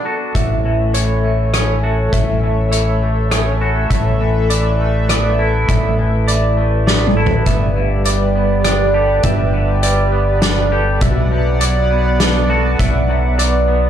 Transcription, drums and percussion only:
0.35 kick, closed hi-hat
0.94 closed hi-hat
1.54 cross-stick, closed hi-hat
2.13 kick, closed hi-hat
2.72 closed hi-hat
3.31 cross-stick, closed hi-hat
3.91 kick, closed hi-hat
4.50 closed hi-hat
5.09 cross-stick, closed hi-hat
5.69 kick, closed hi-hat
6.28 closed hi-hat
6.87 snare
7.07 mid tom
7.26 floor tom
7.46 kick, closed hi-hat
8.05 closed hi-hat
8.65 cross-stick, closed hi-hat
9.23 kick, closed hi-hat
9.83 closed hi-hat
10.42 snare, closed hi-hat
11.01 kick, closed hi-hat
11.61 closed hi-hat
12.20 snare, closed hi-hat
12.79 kick, closed hi-hat
13.39 closed hi-hat

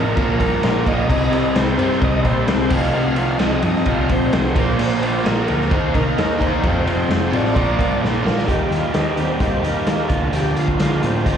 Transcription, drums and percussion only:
0.17 kick, ride
0.40 kick, ride
0.63 snare, ride
0.86 kick, ride
1.10 kick, crash
1.33 ride
1.55 snare, ride
1.79 ride
1.92 snare
2.02 kick, ride
2.25 kick, ride
2.48 snare, ride
2.70 kick, crash
3.16 ride
3.39 snare, ride
3.62 ride
3.75 snare
3.86 kick, ride
4.09 kick, ride
4.33 snare, ride
4.56 kick, ride
4.79 crash
5.03 ride
5.26 snare, ride
5.48 ride
5.61 snare
5.71 kick, ride
5.94 kick, ride
6.18 snare, ride
6.41 kick, ride
6.64 kick, ride
6.87 ride
7.11 snare, ride
7.33 ride
7.46 snare
7.56 kick, ride
7.79 kick, ride
8.04 snare
8.27 snare
8.38 snare
8.48 kick, closed hi-hat
8.72 snare, closed hi-hat
8.94 snare, closed hi-hat
9.17 closed hi-hat
9.40 kick, closed hi-hat
9.64 closed hi-hat
9.87 snare, closed hi-hat
10.09 kick, closed hi-hat
10.33 closed hi-hat
10.57 closed hi-hat
10.68 kick
10.80 snare, closed hi-hat
11.03 closed hi-hat
11.26 kick, closed hi-hat

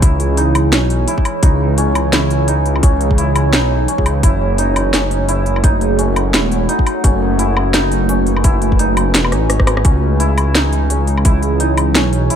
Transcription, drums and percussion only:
0.02 kick, closed hi-hat
0.20 closed hi-hat
0.37 closed hi-hat
0.55 closed hi-hat, low woodblock
0.73 snare, closed hi-hat
0.90 closed hi-hat
1.08 closed hi-hat
1.18 kick
1.25 closed hi-hat, low woodblock
1.43 kick, closed hi-hat
1.78 closed hi-hat
1.95 closed hi-hat, low woodblock
2.13 snare, closed hi-hat
2.30 closed hi-hat
2.48 closed hi-hat
2.66 closed hi-hat
2.76 low woodblock
2.83 kick, closed hi-hat
3.01 closed hi-hat
3.11 kick
3.18 closed hi-hat
3.36 closed hi-hat, low woodblock
3.53 snare, closed hi-hat
3.88 closed hi-hat
3.98 kick
4.06 closed hi-hat, low woodblock
4.23 kick, closed hi-hat
4.58 closed hi-hat
4.76 closed hi-hat, low woodblock
4.94 snare, closed hi-hat
5.11 closed hi-hat
5.29 closed hi-hat
5.46 closed hi-hat
5.56 low woodblock
5.64 kick, closed hi-hat
5.81 closed hi-hat
5.99 closed hi-hat
6.16 closed hi-hat, low woodblock
6.34 snare, closed hi-hat
6.52 closed hi-hat
6.69 closed hi-hat
6.79 kick
6.87 closed hi-hat, low woodblock
7.04 kick, closed hi-hat
7.39 closed hi-hat
7.57 low woodblock
7.74 snare, closed hi-hat
7.92 closed hi-hat
8.09 closed hi-hat
8.27 closed hi-hat
8.37 low woodblock
8.44 kick, closed hi-hat
8.62 closed hi-hat
8.72 kick
8.79 closed hi-hat
8.97 closed hi-hat, low woodblock
9.14 snare, closed hi-hat
9.25 low woodblock
9.32 cross-stick, closed hi-hat
9.50 cross-stick, closed hi-hat
9.60 kick, cross-stick
9.67 cross-stick, closed hi-hat, low woodblock
9.77 cross-stick
9.85 kick, closed hi-hat
10.20 closed hi-hat
10.38 closed hi-hat, low woodblock
10.55 snare, closed hi-hat
10.73 closed hi-hat
10.90 closed hi-hat
11.07 closed hi-hat
11.18 low woodblock
11.25 kick, closed hi-hat
11.43 closed hi-hat
11.60 closed hi-hat
11.78 closed hi-hat, low woodblock
11.95 snare, closed hi-hat
12.13 closed hi-hat
12.30 closed hi-hat

